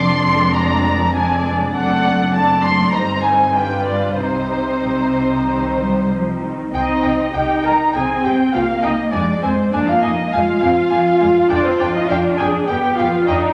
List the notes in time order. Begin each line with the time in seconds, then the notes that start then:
Already playing: F1 F2 G#3 C4 D4 D5 C6
0.55 A#5
1.15 G#3 C4 D4 D5 G#5
1.75 F#1 F#2 A3 C4 D4 D5 F#5
2.34 A3 C4 D4 D5 A5
2.64 C6
2.94 G1 G2 G3 C4 D#4 C5 A#5
3.24 G#5
3.56 G3 D4 F4 B4 G5
3.86 D5
4.18 C2 C3 G3 C4 D#4 C5
4.85 C3
5.49 D#3
5.80 G3
6.12 F3
6.43 D#3
6.73 C2 C4 D#4 D#5 G5
7.03 C2 G5
7.33 C2 D#4 G4 G5
7.62 C2 A#4 G5
7.66 A#5
7.93 C2 C4 G#4 G5 G#5
8.24 C2 G4 G5
8.53 C2 A#3 F4 F5 G5
8.82 C2 D#4 D#5 G5
9.12 F2 G#3 D4 D5 G#5
9.42 F2 C4 C5 G#5
9.73 F2 A#3 D4 D5 G#5
9.88 F4 F5
10.02 F2 D#4 D#5 G#5
10.32 F2 G#3 F4 F5 G#5
10.61 F2 C4 G#5
10.90 F2 A#3 G#5
11.20 F2 G#3 G#5
11.50 F2 D4 F4 D5 G5
11.65 C4 C5
11.80 F2 D4 D5 G5
11.95 D#4 D#5
12.09 F2 D4 F4 F5 G5
12.38 F2 G#4 G5 G#5
12.68 F2 B3 G4 G5
12.97 F2 F4 F5 G5
13.26 F2 D4 D#4 D#5 G5